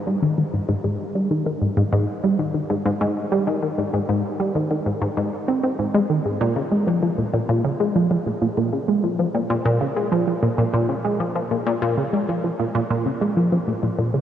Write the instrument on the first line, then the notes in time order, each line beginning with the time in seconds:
synth arpeggio sound
0.07 G3
0.22 D#3
0.38 D#3
0.53 G#2
0.69 G#2
0.84 G#2
1.15 G3
1.31 D#3
1.46 D#3
1.62 G#2
1.77 G#2
1.92 G#2
2.24 G3
2.39 D#3
2.54 D#3
2.70 G#2
2.85 G#2
3.01 G#2
3.32 G3
3.47 D#3
3.62 D#3
3.78 G#2
3.94 G#2
4.09 G#2
4.40 G3
4.55 D#3
4.71 D#3
4.86 G#2
5.02 G#2
5.17 G#2
5.48 C4
5.63 C4
5.79 G#2
5.94 G#3
6.10 D#3
6.25 G#2
6.41 A#2
6.56 C#3
6.72 G#3
6.87 F3
7.03 F3
7.18 A#2
7.34 A#2
7.49 A#2
7.64 C#3
7.80 G#3
7.96 F3
8.11 F3
8.26 A#2
8.42 A#2
8.57 A#2
8.73 C#3
8.88 G#3
9.04 F3
9.19 F3
9.35 A#2
9.50 A#2
9.65 A#2
9.81 C#3
9.97 G#3
10.12 F3
10.28 F3
10.43 A#2
10.58 A#2
10.74 A#2
10.89 C#3
11.05 G#3
11.20 F3
11.36 F3
11.51 A#2
11.67 A#2
11.82 A#2
11.98 C#3
12.13 G#3
12.29 F3
12.44 F3
12.59 A#2
12.75 A#2
12.90 A#2
13.06 C#3
13.21 G#3
13.37 F3
13.52 F3
13.68 A#2
13.83 A#2
13.99 A#2
14.14 C#3